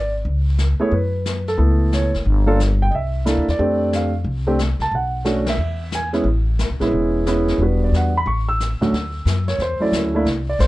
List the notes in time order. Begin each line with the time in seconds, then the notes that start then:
Already playing: G#1 D5
0.25 C#2, brush sweep
0.58 snare, hi-hat pedal
0.80 A3 B3 E4 G#4 C#5, muted upright bass stroke
0.92 F#2 B4, brush sweep
1.26 snare, hi-hat pedal
1.48 A4, snare
1.57 C#2 A3 B3 E4 A4, brush sweep
1.93 C#5, snare, hi-hat pedal
2.13 F#1, snare
2.25 G1, brush sweep
2.47 A#3 D4 F4 A4
2.60 snare, hi-hat pedal
2.82 G5
2.91 C2 D#5, brush sweep
2.95 E5
3.25 A#3 D4 E4 A4, snare, hi-hat pedal
3.37 D2
3.48 E2 D5, snare
3.59 F2 A3 C4 D4 G4, brush sweep
3.93 F5, snare, hi-hat pedal
4.24 C2, brush sweep
4.47 A3 C4 D4 G4
4.59 snare, hi-hat pedal
4.79 C2 A5, snare
4.92 B1 F#5, brush sweep
5.25 A3 C#4 D4 F#4, snare, hi-hat pedal
5.46 E5, snare, ride
5.58 E2, brush sweep
5.92 G#5, snare, hi-hat pedal
6.13 G#3 B3 C#4 E4, snare
6.24 A1, brush sweep
6.59 snare, hi-hat pedal
6.70 B1
6.80 A#1 G#3 B3 C#4 E4, snare
6.92 E1, brush sweep
7.26 G#3 B3 C#4 E4, snare, hi-hat pedal
7.48 snare
7.58 E1 G3 B3 D4, brush sweep
7.63 F#4 B4
7.84 D5
7.92 E2, snare, hi-hat pedal
7.96 F#5
8.17 B5
8.26 A1 C#6, brush sweep
8.49 E6
8.60 snare, hi-hat pedal
8.80 D2 F#3 A3 C#4 F#4, muted upright bass stroke, snare
8.92 D2, brush sweep, snare
9.25 F#2, snare, hi-hat pedal
9.48 C#5, snare
9.58 E2 C5, brush sweep, snare
9.80 F#3 A3 C#4 E4 D5, muted upright bass stroke
9.92 D2, snare, hi-hat pedal
10.15 A3 A#3 D4 E4
10.25 C2, brush sweep, snare
10.49 D5
10.59 A#1 C5, snare, hi-hat pedal